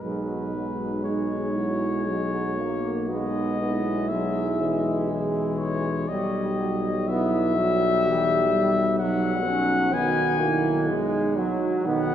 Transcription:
0.01 6.06 B1 medium
0.01 0.51 F#3 medium
0.01 0.56 G#3 medium
0.01 1.01 D#4 soft
0.01 1.04 B4 medium
0.54 1.05 F#3 soft
0.54 2.07 G#3 soft
1.04 1.54 G#3 medium
1.04 1.55 D#4 medium
1.04 2.91 C#5 medium
1.55 2.05 F#3 soft
1.55 2.06 E4 medium
2.06 2.58 F#3 medium
2.06 2.59 G#3 medium
2.06 3.08 F#4 medium
2.57 3.11 A#3 medium
3.08 4.11 G#3 medium
3.08 3.60 B3 medium
3.08 3.60 D#4 medium
3.08 4.10 D#5 medium
3.60 4.13 B3 medium
3.60 5.09 E4 medium
4.08 4.59 F#3 medium
4.08 6.09 G#3 medium
4.08 5.08 E5 medium
4.60 6.10 E3 medium
5.09 5.93 G#4 medium
5.59 6.10 C#5 medium
6.08 11.55 B1 medium
6.08 6.44 G3 medium
6.08 7.10 G3 medium
6.08 7.08 G4 medium
6.08 7.09 D#5 medium
6.58 6.91 F#3 medium
7.07 8.07 F#3 medium
7.07 7.55 B3 medium
7.07 7.59 E4 medium
7.07 8.98 E5 loud
7.57 8.96 G3 medium
7.57 8.07 F#4 medium
8.06 8.39 E3 medium
8.06 9.00 G4 medium
8.53 8.99 G3 medium
8.99 9.47 F#3 medium
8.99 9.94 F#3 medium
8.99 9.92 D#4 medium
8.99 9.95 F#5 medium
9.46 9.94 C#4 medium
9.93 10.89 D#3 medium
9.93 10.41 B3 medium
9.93 10.41 F#4 medium
9.93 10.89 G#5 loud
10.40 10.89 A#3 medium
10.40 10.89 E4 medium
10.88 11.38 G#3 medium
10.88 11.83 D#4 medium
11.36 11.87 F#3 medium
11.36 11.85 F#3 medium
11.84 12.15 B1 medium
11.84 12.15 D#3 medium
11.84 12.15 B3 medium
11.84 12.15 D#4 medium
11.84 12.15 F#5 loud

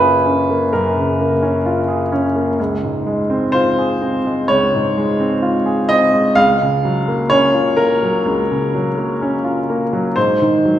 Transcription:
0.00 0.67 F#2 medium
0.00 0.97 C#3 soft
0.00 0.50 A#3 soft
0.00 0.26 C#4 soft
0.00 0.15 F4 soft
0.00 0.39 G#4 soft
0.00 0.72 B4 medium
0.00 2.61 C#5 medium
0.26 0.63 C#4 soft
0.50 0.87 A#3 soft
0.73 2.55 F#2 soft
0.73 2.12 A#4 medium
0.97 1.33 C#3 soft
1.20 1.56 A#3 soft
1.43 1.79 C#4 soft
1.66 2.03 F4 soft
1.88 2.26 G#4 soft
2.12 2.49 C#4 soft
2.36 2.59 A#3 soft
2.60 4.45 C#2 soft
2.83 3.21 G#2 soft
3.07 3.44 G#3 soft
3.30 3.68 C4 soft
3.52 3.92 F4 medium
3.52 4.48 C5 medium
3.79 4.16 G#4 soft
4.02 4.39 C4 soft
4.26 4.63 G#3 soft
4.48 6.32 C#2 soft
4.48 5.88 C#5 medium
4.74 5.10 G#2 soft
4.97 5.33 G#3 soft
5.20 5.56 C4 soft
5.42 5.79 F4 medium
5.66 6.03 G#4 soft
5.89 6.27 C4 soft
5.89 6.36 D#5 medium
6.14 6.36 G#3 soft
6.35 8.20 C#2 medium
6.35 7.29 F5 loud
6.62 6.98 C#3 soft
6.85 7.21 F#3 soft
7.08 7.44 A#3 soft
7.30 7.67 C#4 soft
7.30 7.76 C#5 medium
7.54 7.91 F4 soft
7.77 8.15 A#3 soft
7.77 10.16 A#4 medium
8.03 8.40 F#3 soft
8.26 10.13 C#2 soft
8.51 8.88 C#3 soft
8.75 9.12 F#3 soft
8.98 9.35 A#3 soft
9.22 9.59 C#4 soft
9.44 9.83 F4 soft
9.70 10.07 A#3 soft
9.93 10.17 F#3 soft
10.16 10.79 G#2 soft
10.16 10.79 C5 medium
10.42 10.79 D#3 soft
10.65 10.79 F#3 soft

